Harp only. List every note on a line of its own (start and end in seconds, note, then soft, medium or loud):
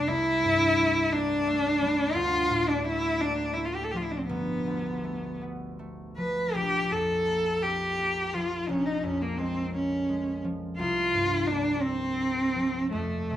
0.00 0.11 F2 medium
0.00 0.11 C3 soft
0.00 0.11 F3 soft
0.00 1.81 G3 medium
0.00 0.78 A3 soft
0.08 2.17 C2 medium
0.44 2.18 G2 soft
0.79 1.46 A3 medium
1.14 1.71 A#3 soft
1.47 2.84 A3 medium
1.82 2.18 G3 medium
2.15 4.32 D2 medium
2.50 4.32 A2 medium
2.85 3.56 A3 medium
3.21 3.82 A#3 soft
3.57 5.03 A3 soft
3.94 6.16 F3 soft
4.29 6.58 G1 medium
4.66 6.58 D2 soft
5.04 5.78 A3 soft
5.41 6.06 B3 soft
5.79 6.58 A3 soft
6.18 8.33 F3 soft
6.55 8.68 A#1 soft
6.91 8.71 F2 soft
7.27 7.97 A#3 soft
7.64 8.23 C4 soft
7.99 8.71 A#3 soft
8.34 10.43 F3 soft
8.69 10.81 A#1 medium
9.04 10.80 F2 soft
9.39 10.08 G#3 soft
9.74 10.33 A#3 soft
10.09 10.81 G#3 soft
10.44 12.54 F3 soft
10.79 12.95 C2 medium
11.13 12.95 G2 soft
11.48 12.19 A#3 soft
11.82 12.43 C4 soft
12.20 12.96 A#3 soft
12.55 13.37 F3 soft
12.92 13.37 F2 soft
13.30 13.37 C3 soft